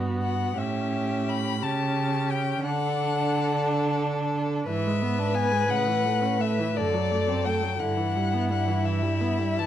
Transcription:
0.00 0.54 G2 soft
0.00 0.57 B3 soft
0.00 0.54 F#4 soft
0.23 0.59 F#5 soft
0.57 1.63 A2 soft
0.57 1.61 C#4 soft
0.57 1.60 G4 soft
0.57 1.31 E5 soft
1.29 1.65 B5 medium
1.62 2.64 C#3 soft
1.62 2.66 C#4 soft
1.62 2.62 G4 soft
1.62 2.33 A5 medium
2.31 2.65 G5 medium
2.65 4.66 D3 soft
2.65 4.69 D4 medium
2.65 4.66 A4 soft
2.65 4.00 F#5 medium
4.69 5.72 G#2 soft
4.69 4.88 E3 medium
4.69 6.79 B4 soft
4.69 5.36 E5 medium
4.87 5.03 G#3 soft
5.02 5.20 B3 soft
5.19 5.36 D4 soft
5.34 5.53 B3 soft
5.34 5.72 G#5 medium
5.52 5.68 G#3 soft
5.69 6.79 A2 soft
5.69 5.89 C#3 soft
5.69 6.42 F#5 medium
5.88 6.08 E3 soft
6.06 6.24 A3 soft
6.22 6.42 C#4 soft
6.40 6.61 A3 soft
6.40 6.78 E5 medium
6.59 6.75 E3 soft
6.76 7.81 F#2 soft
6.76 6.95 D3 soft
6.76 7.81 A4 soft
6.76 7.46 D5 medium
6.94 7.13 F#3 soft
7.11 7.30 A3 soft
7.28 7.47 C4 soft
7.45 7.64 A3 soft
7.45 7.81 G5 medium
7.62 7.78 F#3 soft
7.78 9.66 G2 soft
7.78 7.98 D3 soft
7.78 9.66 E4 soft
7.78 8.50 F#5 medium
7.97 8.18 E3 soft
8.16 8.35 G3 soft
8.34 8.52 B3 soft
8.50 8.69 G3 soft
8.50 8.86 F#5 medium
8.68 8.84 E3 soft
8.84 9.04 E3 soft
8.84 9.60 E5 medium
9.02 9.22 G3 soft
9.21 9.40 B3 soft
9.39 9.60 G3 soft
9.59 9.66 E3 soft
9.59 9.66 A5 medium

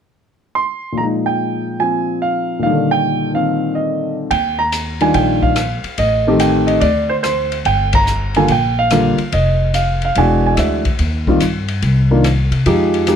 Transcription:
0.55 0.94 C6 medium
0.92 2.58 A#2 soft
0.92 1.79 F3 soft
0.98 2.65 G#3 soft
0.98 1.04 A#5 medium
1.03 2.67 D#4 soft
1.26 1.83 G5 medium
1.80 2.64 F3 soft
1.80 2.65 C4 soft
1.80 2.19 G#5 medium
2.22 2.61 F5 medium
2.59 4.29 A#2 soft
2.59 3.32 D#3 soft
2.59 2.92 F5 medium
2.66 4.34 D3 soft
2.66 4.32 G3 soft
2.91 3.31 G5 medium
3.33 4.31 D#3 soft
3.33 4.32 C4 soft
3.33 3.77 F5 medium
3.75 4.14 D#5 medium
4.31 5.11 D#2 medium
4.31 4.60 G5 medium
4.31 kick soft
4.31 ride soft
4.59 5.02 A#5 medium
4.72 hi-hat pedal medium
4.72 ride medium
5.01 5.54 D#3 medium
5.01 5.54 G3 soft
5.01 5.54 D4 soft
5.01 5.54 F4 soft
5.01 5.16 G#5 medium
5.01 ride soft
5.14 5.80 A#1 medium
5.14 5.41 G5 medium
5.14 kick soft
5.14 ride soft
5.43 6.00 F5 medium
5.43 kick soft
5.56 cross-stick soft
5.56 hi-hat pedal soft
5.56 ride medium
5.83 muted upright bass stroke soft
5.83 ride soft
5.98 6.78 A1 medium
5.98 6.38 D#5 medium
5.98 kick soft
5.98 ride soft
6.27 6.80 D#3 medium
6.27 6.80 A3 medium
6.27 6.80 C4 medium
6.27 6.80 G4 medium
6.40 6.69 G5 medium
6.40 hi-hat pedal medium
6.40 ride medium
6.67 6.80 D#5 medium
6.67 ride soft
6.80 7.61 D2 medium
6.80 7.10 D5 medium
6.80 kick soft
6.80 ride soft
7.09 7.14 C5 medium
7.23 7.56 C5 medium
7.23 cross-stick soft
7.23 hi-hat pedal soft
7.23 ride medium
7.52 ride soft
7.65 8.45 G1 medium
7.65 7.95 G5 medium
7.65 kick soft
7.65 ride soft
7.93 8.37 A#5 loud
7.93 kick medium
7.93 ride medium
8.07 hi-hat pedal medium
8.34 8.48 D3 medium
8.34 8.49 G3 medium
8.34 8.48 A#3 medium
8.34 8.49 F4 medium
8.34 8.49 G#5 medium
8.34 ride soft
8.48 9.15 A#1 medium
8.48 8.79 G5 medium
8.48 kick soft
8.48 ride soft
8.79 9.30 F5 medium
8.90 9.16 D3 medium
8.90 9.17 G3 medium
8.90 9.17 A#3 medium
8.90 9.17 F4 medium
8.90 cross-stick medium
8.90 hi-hat pedal soft
8.90 ride medium
9.18 muted upright bass stroke soft
9.18 ride soft
9.32 10.12 F1 medium
9.32 9.76 D#5 medium
9.32 kick soft
9.32 ride medium
9.74 10.03 F5 medium
9.74 hi-hat pedal soft
9.74 ride medium
10.02 10.18 F5 medium
10.02 ride soft
10.15 10.55 E1 medium
10.15 10.81 E3 medium
10.15 10.81 G#3 medium
10.15 10.81 D4 medium
10.15 10.81 F#4 medium
10.15 10.45 G#5 medium
10.15 kick soft
10.15 ride soft
10.46 10.55 G#5 medium
10.53 10.96 D2 medium
10.53 10.58 D#5 soft
10.53 hi-hat pedal medium
10.53 ride medium
10.57 10.91 E5 medium
10.57 cross-stick medium
10.85 kick medium
10.85 ride soft
10.99 11.38 D#2 medium
10.99 kick soft
10.99 ride soft
11.27 11.40 D#3 medium
11.27 11.40 G3 medium
11.27 11.40 C4 medium
11.27 11.40 F4 medium
11.27 kick medium
11.40 11.80 G2 medium
11.40 hi-hat pedal soft
11.40 ride medium
11.68 ride soft
11.82 12.48 C2 medium
11.82 kick soft
11.82 ride soft
12.11 12.23 D#3 medium
12.11 12.23 A#3 medium
12.11 12.23 D4 medium
12.11 12.24 F4 medium
12.24 cross-stick soft
12.24 hi-hat pedal medium
12.24 ride medium
12.51 12.65 C3 medium
12.51 ride soft
12.66 13.16 F2 medium
12.66 13.06 F3 medium
12.66 13.06 G#3 soft
12.66 13.06 D#4 soft
12.66 13.07 G4 medium
12.66 kick soft
12.66 ride medium
12.94 ride soft
13.07 13.16 F3 medium
13.07 13.16 G#3 medium
13.07 13.16 D#4 soft
13.07 13.16 G4 medium
13.07 hi-hat pedal soft
13.07 ride medium

